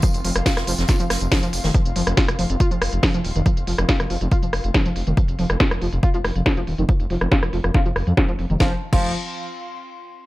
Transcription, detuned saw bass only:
\new Staff \with { instrumentName = "Detuned saw bass" } { \clef bass \time 4/4 \key c \phrygian \tempo 4 = 140 r16 f,,16 f,,16 f,,16 r16 f,,16 f,,16 f,,16 r16 f,,16 f,,16 f,,16 r16 f,,16 f,,16 f,,16 | r16 f,,16 f,,16 f,,16 r16 f,,16 f,,16 f,,16 r16 f,,16 f,,16 f,,16 r16 f,,16 ees,,16 f,,16 | r16 f,,16 f,,16 f,,16 r16 f,,16 f,,16 f,,16 r16 f,,16 f,,16 f,,16 r16 f,,16 f,,16 f,,16 | r16 f,,16 f,,16 f,,16 r16 f,,16 f,,16 f,,16 r16 f,,16 f,,16 f,,16 r16 f,,16 ees,,16 f,,16 |
r16 f,,16 f,,16 f,,16 r16 f,,16 f,,16 f,,16 r16 f,,16 f,,16 f,16 r16 f,,16 f,,16 f,,16 | f,,16 r8 f,,8 r2 r8. | }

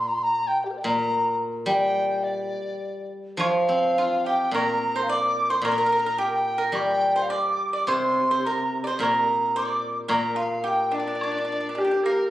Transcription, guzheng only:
\new Staff \with { instrumentName = "Guzheng" } { \clef bass \time 2/4 \tempo 4 = 108 bes,4 r8 bes,8~ | bes,4 g4~ | g2 | f8 c'8 f'4 |
bes,2 | bes,2 | g2 | c2 |
bes,2 | bes,2~ | bes,4 r4 | }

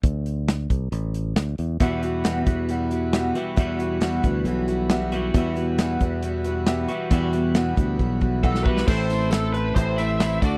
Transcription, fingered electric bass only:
\new Staff \with { instrumentName = "Fingered electric bass" } { \clef bass \time 4/4 \key e \minor \tempo 4 = 136 d,4. c,8 a,,4 d,8 e,8 | e,4. e,2 r8 | e,4. d,8 b,,2 | e,4. e,2 r8 |
e,4. d,8 b,,2 | a,,2 a,,4. d,8 | }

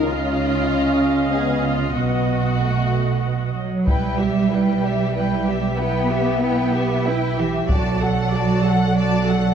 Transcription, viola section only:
\new Staff \with { instrumentName = "Viola section" } { \time 3/4 \key ces \lydian \tempo 4 = 94 << { f''2. | fis''2~ fis''8 r8 | \key e \dorian r2. | r2. |
r2. | } \\ { ees''2.~ | ees''2~ ees''8 r8 | e'8 g'8 e'8 g'8 e'8 g'8 | e'8 g'8 e'8 g'8 e'8 g'8 |
fis'8 a'8 fis'8 a'8 fis'8 a'8 | } >> }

